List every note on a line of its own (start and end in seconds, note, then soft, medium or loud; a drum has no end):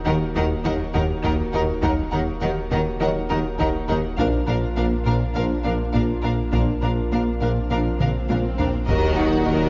0.00 4.20 D#1 medium
0.00 4.14 A#3 medium
0.00 4.18 D#4 medium
0.00 4.18 F#4 medium
0.00 4.14 A#4 medium
0.05 0.18 D#2 medium
0.05 0.14 D#2 medium
0.05 0.24 D#3 medium
0.05 0.14 D#3 medium
0.05 0.13 D#4 medium
0.05 0.15 A#4 medium
0.05 0.14 F#5 medium
0.35 0.53 D#2 loud
0.35 0.44 D#2 medium
0.35 0.48 D#2 medium
0.35 0.44 D#3 medium
0.35 0.43 D#4 medium
0.35 0.44 A#4 medium
0.35 0.44 F#5 medium
0.65 0.83 D#2 medium
0.65 0.73 D#2 medium
0.65 0.77 D#2 medium
0.65 0.74 D#3 medium
0.65 0.85 F#3 medium
0.65 0.73 D#4 medium
0.65 0.86 D#4 medium
0.65 0.73 A#4 medium
0.65 0.73 F#5 medium
0.94 1.12 D#2 medium
0.94 1.03 D#2 medium
0.94 1.07 D#2 medium
0.94 1.03 D#3 medium
0.94 1.02 D#4 medium
0.94 1.02 A#4 medium
0.94 1.02 F#5 medium
1.24 1.32 D#2 medium
1.24 1.42 D#2 medium
1.24 1.36 D#2 medium
1.24 1.32 D#3 medium
1.24 1.32 D#4 medium
1.24 1.32 A#4 medium
1.24 1.32 F#5 medium
1.24 taiko medium
1.53 1.62 D#2 medium
1.53 1.71 D#2 medium
1.53 1.66 D#2 medium
1.53 1.62 D#3 medium
1.53 1.61 D#4 medium
1.53 1.62 A#4 medium
1.53 1.61 F#5 medium
1.82 2.00 D#2 medium
1.82 1.91 D#2 medium
1.82 1.95 D#2 medium
1.82 1.91 D#3 medium
1.82 2.04 F#3 medium
1.82 1.90 D#4 medium
1.82 2.04 D#4 medium
1.82 1.91 A#4 medium
1.82 1.91 F#5 medium
1.82 taiko medium
2.12 2.20 D#2 medium
2.12 2.24 D#2 medium
2.12 2.30 D#2 medium
2.12 2.21 D#3 medium
2.12 2.20 D#4 medium
2.12 2.20 A#4 medium
2.12 2.20 F#5 medium
2.41 2.49 D#2 medium
2.41 2.54 D#2 medium
2.41 2.59 D#3 medium
2.41 2.50 D#3 medium
2.41 2.50 D#4 medium
2.41 2.49 A#4 medium
2.41 2.49 F#5 medium
2.71 2.89 D#2 medium
2.71 2.79 D#2 medium
2.71 2.83 D#2 medium
2.71 2.80 D#3 medium
2.71 2.79 D#4 medium
2.71 2.79 A#4 medium
2.71 2.79 F#5 medium
3.00 3.18 D#2 medium
3.00 3.09 D#2 medium
3.00 3.12 D#2 medium
3.00 3.09 D#3 medium
3.00 3.21 F#3 medium
3.00 3.08 D#4 medium
3.00 3.22 D#4 medium
3.00 3.09 A#4 medium
3.00 3.09 F#5 medium
3.30 3.48 D#2 medium
3.30 3.38 D#2 medium
3.30 3.42 D#2 medium
3.30 3.39 D#3 medium
3.30 3.38 D#4 medium
3.30 3.38 A#4 medium
3.30 3.38 F#5 medium
3.59 3.76 D#2 medium
3.59 3.67 D#2 medium
3.59 3.71 D#2 medium
3.59 3.68 D#3 medium
3.59 3.67 D#4 medium
3.59 3.67 A#4 medium
3.59 3.68 F#5 medium
3.59 taiko medium
3.88 4.06 D#2 medium
3.88 3.97 D#2 medium
3.88 4.01 D#2 medium
3.88 3.98 D#3 medium
3.88 3.97 D#4 medium
3.88 3.96 A#4 medium
3.88 3.97 F#5 medium
4.18 4.26 A#1 medium
4.18 4.30 A#1 medium
4.18 8.88 A#1 medium
4.18 4.36 A#2 medium
4.18 4.27 A#2 medium
4.18 4.38 F3 medium
4.18 8.85 A#3 medium
4.18 8.89 D4 medium
4.18 4.26 D4 medium
4.18 4.39 D4 medium
4.18 8.88 F4 medium
4.18 4.26 A#4 medium
4.18 8.85 A#4 medium
4.18 4.26 F5 medium
4.18 taiko loud
4.47 4.56 A#1 medium
4.47 4.60 A#1 medium
4.47 4.65 A#2 medium
4.47 4.56 A#2 medium
4.47 4.55 D4 medium
4.47 4.56 A#4 medium
4.47 4.56 F5 medium
4.77 4.85 A#1 medium
4.77 4.89 A#1 medium
4.77 4.86 A#2 medium
4.77 4.95 A#3 medium
4.77 4.85 D4 medium
4.77 4.85 A#4 medium
4.77 4.85 F5 medium
5.06 5.14 A#1 medium
5.06 5.18 A#1 soft
5.06 5.24 A#2 medium
5.06 5.15 A#2 medium
5.06 5.14 D4 medium
5.06 5.14 A#4 medium
5.06 5.14 F5 soft
5.35 5.44 A#1 medium
5.35 5.48 A#1 medium
5.35 5.53 A#2 medium
5.35 5.44 A#2 medium
5.35 5.57 F3 medium
5.35 5.43 D4 soft
5.35 5.57 D4 medium
5.35 5.43 A#4 medium
5.35 5.43 F5 medium
5.65 5.77 A#1 soft
5.65 5.73 A#1 medium
5.65 5.83 A#2 medium
5.65 5.73 A#2 medium
5.65 5.73 D4 soft
5.65 5.73 A#4 soft
5.65 5.73 F5 soft
5.94 6.03 A#1 medium
5.94 6.06 A#1 soft
5.94 6.02 A#2 medium
5.94 6.12 A#2 medium
5.94 6.02 D4 medium
5.94 6.02 A#4 medium
5.94 6.02 F5 soft
5.94 taiko medium
6.23 6.31 A#1 medium
6.23 6.36 A#1 soft
6.23 6.32 A#2 medium
6.23 6.42 A#2 medium
6.23 6.32 D4 soft
6.23 6.31 A#4 soft
6.23 6.32 F5 soft
6.53 6.61 A#1 medium
6.53 6.65 A#1 medium
6.53 6.71 A#2 medium
6.53 6.61 A#2 soft
6.53 6.74 F3 medium
6.53 6.61 D4 soft
6.53 6.74 D4 medium
6.53 6.61 A#4 soft
6.53 6.62 F5 soft
6.53 taiko medium
6.53 swell soft
6.82 6.91 A#1 medium
6.82 6.95 A#1 medium
6.82 7.00 A#2 medium
6.82 6.91 A#2 soft
6.82 6.90 D4 soft
6.82 6.90 A#4 soft
6.82 6.91 F5 soft
7.12 7.20 A#1 soft
7.12 7.24 A#1 soft
7.12 7.20 A#2 medium
7.12 7.30 A#3 medium
7.12 7.20 D4 soft
7.12 7.20 A#4 soft
7.12 7.20 F5 soft
7.41 7.50 A#1 soft
7.41 7.54 A#1 soft
7.41 7.59 A#2 medium
7.41 7.50 A#2 medium
7.41 7.49 D4 soft
7.41 7.50 A#4 soft
7.41 7.50 F5 soft
7.70 7.83 A#1 soft
7.70 7.79 A#1 medium
7.70 7.79 A#2 soft
7.70 7.89 A#2 medium
7.70 7.92 F3 medium
7.70 7.79 D4 soft
7.70 7.92 D4 soft
7.70 7.78 A#4 soft
7.70 7.79 F5 soft
8.00 8.08 A#1 medium
8.00 8.12 A#1 soft
8.00 8.18 A#2 medium
8.00 8.08 A#2 soft
8.00 8.08 D4 soft
8.00 8.08 A#4 soft
8.00 8.09 F5 soft
8.00 taiko mid medium
8.29 8.42 A#1 soft
8.29 8.38 A#1 soft
8.29 8.47 A#2 medium
8.29 8.38 A#2 medium
8.29 8.38 D4 soft
8.29 8.38 A#4 soft
8.29 8.37 F5 soft
8.29 taiko high medium
8.59 8.67 A#1 soft
8.59 8.71 A#1 soft
8.59 8.77 A#2 medium
8.59 8.68 A#2 soft
8.59 8.67 D4 soft
8.59 8.67 A#4 soft
8.59 8.67 F5 soft
8.59 taiko low medium
8.88 9.69 D#1 medium
8.88 9.41 D#2 medium
8.88 9.06 D#2 loud
8.88 9.41 D#2 medium
8.88 9.69 A#2 medium
8.88 9.41 D#3 medium
8.88 9.69 F#3 medium
8.88 9.69 A#3 medium
8.88 9.69 D#4 medium
8.88 9.16 F#4 medium
8.88 9.69 F#4 medium
8.88 9.16 A#4 medium
8.88 9.69 A#4 medium
8.88 9.16 D#5 medium
8.88 taiko loud
8.88 sub drop medium
9.18 9.36 D#2 medium
9.18 9.48 D#4 medium
9.18 9.48 F#4 medium
9.18 9.47 F#5 medium
9.47 9.69 D#2 medium
9.47 9.69 D#3 medium
9.47 9.65 D#3 medium
9.47 9.69 F#4 medium
9.47 9.69 A#4 medium
9.47 9.69 D#5 medium